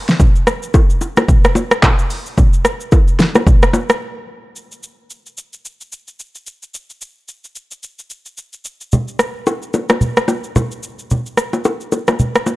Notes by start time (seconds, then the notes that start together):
0.08 snare, shaker
0.20 kick, low conga, shaker
0.36 shaker
0.47 cross-stick, shaker
0.63 shaker
0.74 kick, high bongo, shaker
0.90 shaker
1.01 high bongo, shaker
1.17 cross-stick, high bongo, low bongo, shaker
1.28 kick, low conga, shaker
1.44 cross-stick, shaker
1.55 low bongo, shaker
1.71 cross-stick, shaker
1.83 kick, clap, high bongo, low conga, shaker
1.99 shaker
2.10 open hi-hat, shaker
2.26 shaker
2.38 kick, low conga, shaker
2.53 shaker
2.65 cross-stick, shaker
2.81 shaker
2.92 kick, high bongo, shaker
3.08 shaker
3.19 snare, high bongo, shaker
3.35 cross-stick, high bongo, low bongo, shaker
3.47 kick, low conga, shaker
3.63 cross-stick, shaker
3.73 low bongo, shaker
3.90 cross-stick, shaker
4.56 shaker
4.72 shaker
4.83 shaker
5.10 shaker
5.26 shaker
5.38 shaker
5.53 shaker
5.65 shaker
5.81 shaker
5.92 shaker
6.08 shaker
6.20 shaker
6.35 shaker
6.47 shaker
6.63 shaker
6.74 shaker
6.90 shaker
7.01 shaker
7.28 shaker
7.44 shaker
7.56 shaker
7.71 shaker
7.83 shaker
7.99 shaker
8.10 shaker
8.26 shaker
8.37 shaker
8.53 shaker
8.65 shaker
8.81 shaker
8.92 low conga, shaker
9.08 shaker
9.19 cross-stick, shaker
9.47 high bongo, shaker
9.62 shaker
9.74 high bongo, low bongo, shaker
9.89 cross-stick, low bongo, shaker
10.01 low conga, shaker
10.17 cross-stick, shaker
10.28 low bongo, shaker
10.44 shaker
10.56 high bongo, low conga, shaker
10.71 shaker
10.83 shaker
10.99 shaker
11.11 low conga, shaker
11.26 shaker
11.37 cross-stick, shaker
11.53 low bongo, shaker
11.65 high bongo, shaker
11.81 shaker
11.92 high bongo, low bongo, shaker
12.08 cross-stick, low bongo, shaker
12.19 low conga, shaker
12.35 cross-stick, shaker
12.46 low bongo, shaker